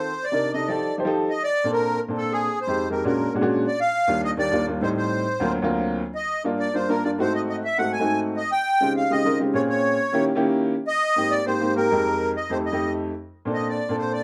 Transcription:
Already playing: upright piano F4 A4, accordion C5
0.24 accordion D5
0.32 upright piano C3 D4 D#4 A#4
0.53 upright piano C3 D4 D#4 A4, accordion D#5
0.67 upright piano F3 D#4 G4 A4, accordion D5
0.98 upright piano F3 D#4 G4 C5
1.05 upright piano F3 D#4 G4 A4
1.30 accordion D#5
1.44 accordion D5
1.64 upright piano A#2 C4 D4 A4
1.73 accordion A#4
2.08 upright piano A#2 C4 D4 A4
2.18 accordion A4
2.32 accordion G#4
2.61 accordion C5
2.67 upright piano F2 G#3 D#4 G4
2.90 upright piano F2 G#3 D#4 G4, accordion A#4
3.04 upright piano A#2 G#3 C#4 D4 F#4, accordion A#4
3.34 upright piano A#2 G#3 C#4 D4 F#4
3.41 upright piano A#2 G#3 C#4 D4 F#4
3.67 accordion D5
3.81 accordion F5
4.07 upright piano D#2 G3 A#3 D4 F4
4.25 accordion D#5
4.37 upright piano D#2 G3 A#3 D4 G4, accordion D5
4.51 upright piano D#2 G3 A#3 D4 F4
4.67 upright piano D#2 G3 A#3 D4 F4
4.81 upright piano A2 G3 C4 D#4, accordion C5
4.97 accordion C5
5.40 upright piano D2 F#3 A#3 C4 F4
5.62 upright piano D2 F#3 A#3 C4 F4
6.15 accordion D#5
6.44 upright piano G2 A#3 D4 F4
6.59 accordion D5
6.74 upright piano G2 A#3 D4 F4, accordion C5
6.88 upright piano G2 A#3 D4 F4, accordion A#4
7.04 upright piano G2 A#3 D4 F4, accordion D5
7.18 upright piano G#2 A3 C4 D#4 F#4, accordion C5
7.35 accordion D#5
7.49 accordion D#5
7.65 accordion E5
7.78 upright piano G#2 A3 C4 D#4 F#4, accordion F#5
7.92 accordion G#5
7.99 upright piano G#2 A3 C4 D#4 F#4
8.37 accordion D#5
8.52 accordion G5
8.81 upright piano C#3 G#3 C4 D#4 F4 G4
8.97 accordion F5
9.10 upright piano C#3 G#3 C4 D#4 F4 G4, accordion D#5
9.24 upright piano C#3 G#3 C4 D#4 F4 A#4
9.39 upright piano C#3 G#3 C4 D#4 F4 G4
9.54 upright piano A#2 C4 C#4 F4 G#4, accordion C#5
9.70 accordion C#5
10.12 upright piano D#3 A#3 C#4 E4 G4
10.35 upright piano D#3 A#3 C#4 E4 G4
10.88 accordion D#5
11.16 upright piano G#2 A#3 C4 G4
11.31 accordion D5
11.46 upright piano G#2 A#3 C4 G4, accordion C5
11.60 upright piano G#2 A#3 C4 G4
11.76 upright piano G#2 A#3 C4 G4, accordion A#4
11.91 upright piano F2 G#3 D#4 G4
12.36 accordion D#5
12.50 upright piano F2 A3 D#4 G4, accordion C5
12.66 accordion D#5
12.72 upright piano F2 A3 D#4 G4
13.45 upright piano A#2 C4 D4 A4
13.54 accordion D#5
13.69 accordion D5
13.89 upright piano A#2 C4 D4 A4
13.98 accordion C5
14.13 accordion D5

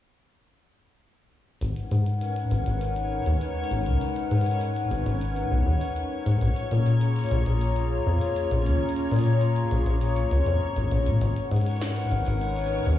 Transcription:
1.61 acid bass G#1, analog synth pad G#3 D#4 A#4 B4 F#5, synth texture C#4 C#5, closed hi-hat
1.76 closed hi-hat
1.91 acid bass G#2, closed hi-hat
2.06 closed hi-hat
2.21 closed hi-hat
2.36 closed hi-hat
2.51 acid bass G#1, closed hi-hat
2.66 acid bass G#1, closed hi-hat
2.81 closed hi-hat
2.96 closed hi-hat
3.26 acid bass D#2, closed hi-hat
3.41 closed hi-hat
3.64 closed hi-hat
3.71 acid bass G#1, closed hi-hat
3.86 acid bass C#2, closed hi-hat
4.01 closed hi-hat
4.16 closed hi-hat
4.31 acid bass G#2, closed hi-hat
4.41 closed hi-hat
4.46 closed hi-hat
4.51 closed hi-hat
4.61 closed hi-hat
4.76 closed hi-hat
4.91 acid bass G#1, closed hi-hat
5.06 acid bass G#1, closed hi-hat
5.21 closed hi-hat
5.36 closed hi-hat
5.51 acid bass B1
5.66 acid bass D#2
5.81 closed hi-hat
5.96 closed hi-hat
6.26 acid bass G#2, closed hi-hat
6.41 acid bass A#1, analog synth pad A#3 F4 G#4 C#5 A#5, closed hi-hat
6.56 closed hi-hat
6.71 acid bass A#2, closed hi-hat
6.86 closed hi-hat
7.01 closed hi-hat
7.16 closed hi-hat
7.19 closed hi-hat
7.21 closed hi-hat
7.24 closed hi-hat
7.26 closed hi-hat
7.29 acid bass A#1, closed hi-hat
7.31 closed hi-hat
7.46 acid bass A#1, closed hi-hat
7.61 closed hi-hat
7.76 closed hi-hat
8.06 acid bass F2
8.21 closed hi-hat
8.36 closed hi-hat
8.51 acid bass A#1, closed hi-hat
8.66 acid bass D#2, closed hi-hat
8.89 closed hi-hat
8.96 closed hi-hat
9.11 acid bass A#2, closed hi-hat
9.14 closed hi-hat
9.16 closed hi-hat
9.19 closed hi-hat
9.21 closed hi-hat
9.24 closed hi-hat
9.26 closed hi-hat
9.41 closed hi-hat
9.56 closed hi-hat
9.71 acid bass A#1, closed hi-hat
9.86 acid bass A#1, closed hi-hat
10.01 closed hi-hat
10.17 closed hi-hat
10.31 acid bass C#2, closed hi-hat
10.46 acid bass F2, closed hi-hat
10.76 acid bass G#1, closed hi-hat
10.91 acid bass A#1, closed hi-hat
11.06 acid bass A#2, closed hi-hat
11.21 acid bass G#1, analog synth pad G#3 D#4 A#4 B4 F#5, closed hi-hat
11.37 closed hi-hat
11.51 acid bass G#2, closed hi-hat
11.56 closed hi-hat
11.61 closed hi-hat
11.66 closed hi-hat
11.71 closed hi-hat
11.76 closed hi-hat
11.81 snare, closed hi-hat
11.96 closed hi-hat
12.11 acid bass G#1, closed hi-hat
12.26 acid bass G#1, closed hi-hat
12.41 closed hi-hat
12.56 closed hi-hat
12.59 closed hi-hat
12.61 closed hi-hat
12.64 closed hi-hat
12.66 closed hi-hat
12.69 closed hi-hat
12.86 acid bass D#2, closed hi-hat

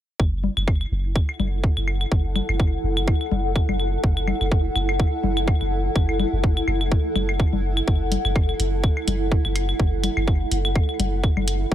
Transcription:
0.20 sub bass F#1, ambient pad E4, kick, claves
0.44 low conga
0.57 sub bass F#1, claves
0.68 kick, claves
0.81 ambient pad F#5, claves
0.92 sub bass F#1
1.03 ambient pad A4
1.16 kick, claves
1.29 claves
1.40 sub bass F#1, low conga, claves
1.64 kick
1.77 sub bass F#1, claves
1.88 claves
2.01 claves
2.12 sub bass F#1, kick
2.36 low conga, claves
2.49 sub bass F#1, claves
2.60 kick, claves
2.84 sub bass F#1
2.97 claves
3.08 kick, claves
3.21 claves
3.32 sub bass F#1, low conga
3.56 kick, claves
3.69 sub bass F#1, low conga, claves
3.80 claves
4.04 sub bass F#1, kick
4.17 claves
4.28 low conga, claves
4.41 sub bass F#1, claves
4.52 kick
4.76 sub bass F#1, claves
4.89 claves
5.00 kick, claves
5.24 sub bass F#1, low conga
5.37 claves
5.48 kick, claves
5.61 sub bass F#1, claves
5.96 sub bass F#1, kick, claves
6.09 claves
6.20 low conga, claves
6.33 sub bass F#1
6.44 kick
6.57 claves
6.68 sub bass F#1, claves
6.81 claves
6.92 kick
7.16 sub bass F#1, low conga, claves
7.29 claves
7.40 kick, claves
7.53 sub bass F#1, low conga
7.77 claves
7.88 sub bass F#1, kick, claves
8.12 closed hi-hat, low conga
8.25 sub bass F#1, claves
8.36 kick, claves
8.49 claves
8.60 sub bass F#1, closed hi-hat
8.84 kick, claves
8.97 claves
9.08 sub bass F#1, closed hi-hat, low conga, claves
9.32 kick
9.45 sub bass F#1, claves
9.56 closed hi-hat, claves
9.69 claves
9.80 sub bass F#1, kick
10.04 closed hi-hat, low conga, claves
10.17 sub bass F#1, claves
10.28 kick, claves
10.51 sub bass F#1, closed hi-hat
10.65 claves
10.76 kick, claves
10.89 claves
11.00 sub bass F#1, closed hi-hat, low conga
11.24 kick, claves
11.37 sub bass F#1, low conga, claves
11.48 closed hi-hat, claves
11.72 sub bass F#1, kick

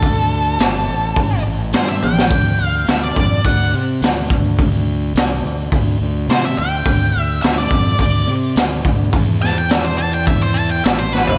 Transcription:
Already playing: fingered electric bass D2, lead electric guitar A4
0.03 kick, open hi-hat
0.59 fingered electric bass G1, snare, open hi-hat
0.89 fingered electric bass A1
1.16 fingered electric bass A1, kick, open hi-hat
1.46 fingered electric bass A1
1.72 fingered electric bass G2, lead electric guitar C5, snare, open hi-hat
1.88 lead electric guitar E5
2.02 fingered electric bass A1, lead electric guitar G5, high tom
2.18 snare
2.31 fingered electric bass D2, kick, open hi-hat
2.60 fingered electric bass D2
2.66 lead electric guitar F5
2.87 fingered electric bass D2, lead electric guitar E5, snare, open hi-hat
3.03 lead electric guitar D5
3.16 fingered electric bass F2, kick
3.45 fingered electric bass D2, lead electric guitar F#5, kick, open hi-hat
3.74 fingered electric bass C3
4.01 fingered electric bass D2, snare, open hi-hat
4.30 fingered electric bass D2, kick
4.59 kick, open hi-hat
5.15 fingered electric bass C2, snare, open hi-hat
5.43 fingered electric bass D2
5.72 fingered electric bass D2, kick, open hi-hat
6.00 fingered electric bass D2
6.28 fingered electric bass C3, lead electric guitar C5, snare, open hi-hat
6.45 lead electric guitar E5
6.58 fingered electric bass D2, lead electric guitar G5
6.86 fingered electric bass D2, kick, open hi-hat
7.16 fingered electric bass D2
7.23 lead electric guitar E5
7.42 fingered electric bass D2, lead electric guitar E5, snare, open hi-hat
7.58 lead electric guitar D5
7.71 fingered electric bass F2, kick
7.98 fingered electric bass D2, lead electric guitar D5, kick, open hi-hat
8.28 fingered electric bass C3
8.56 fingered electric bass D2, snare, open hi-hat
8.85 fingered electric bass D2, kick
9.13 fingered electric bass E2, kick, open hi-hat
9.42 lead electric guitar A5, snare
9.58 lead electric guitar G5
9.69 lead electric guitar E5, snare, open hi-hat
9.84 lead electric guitar C5
9.98 lead electric guitar A5
10.13 lead electric guitar G5
10.27 lead electric guitar E5, kick, open hi-hat
10.42 lead electric guitar C5
10.54 lead electric guitar A5
10.70 lead electric guitar G5
10.84 fingered electric bass A1, lead electric guitar E5, snare, open hi-hat
10.99 lead electric guitar C5
11.13 lead electric guitar B4, snare
11.27 floor tom

